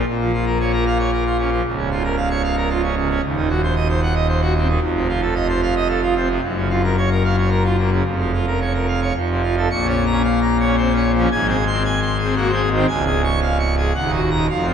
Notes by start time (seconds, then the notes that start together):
0.07 A#1 A#2
0.20 F3
0.33 F4
0.46 A#4
0.60 C#5
0.73 A#4
0.86 F5
0.99 C#5
1.13 A#4
1.26 F4
1.38 C#4
1.51 F3
1.65 C#1 C#2
1.78 C#3
1.91 F4
2.04 A#4
2.17 F5
2.30 C#5
2.44 F5
2.57 A#4
2.70 F4
2.83 C#4
2.97 C#3
3.10 C#4
3.23 D#1 D#2
3.37 D#3
3.49 F#4
3.63 C5
3.76 D#5
3.89 C5
4.02 F#5
4.15 D#5
4.28 C5
4.41 F#4
4.55 C4
4.68 D#3
4.81 F1 F2
4.95 C3
5.09 F4
5.22 A4
5.35 D#5
5.49 C5
5.62 F5
5.76 D#5
5.89 A4
6.03 F4
6.16 C4
6.30 C3
6.42 F#1 F#2
6.56 C#3
6.70 F4
6.84 A#4
6.98 C#5
7.11 A#4
7.24 F5
7.38 C#5
7.51 A#4
7.64 F4
7.78 A#3
7.92 C#3
8.05 F1 F2
8.19 F3
8.33 F4
8.47 A#4
8.61 C#5
8.74 A#4
8.88 F5
9.02 C#5
9.15 F1 F2
9.30 C3
9.44 F4
9.58 A4
9.71 A#1 A#2 C#6
9.84 C#4
9.89 C#5
10.06 A#5
10.11 C#4
10.24 F5
10.41 A#5
10.60 C#5
10.65 C#4
10.78 C4 C5
10.91 C#4
10.96 C#5
11.14 F3
11.18 C#4
11.31 G#1 G#2 G#5
11.45 C4 G#4
11.67 C6
11.72 C4
11.85 G#5
12.02 C6
12.19 G#4
12.24 C4
12.36 A#3 F#4
12.49 C4
12.54 G#4
12.71 D#3
12.75 C4
12.88 C#1 C#2 G#5
13.06 G#4
13.24 C#6
13.42 F5
13.59 C#6
13.78 G#4
13.95 D#1 D#2 F#5
14.08 D#4
14.13 F#4
14.31 A#5
14.35 D#4
14.49 F1 F2 F5
14.63 C4
14.67 F4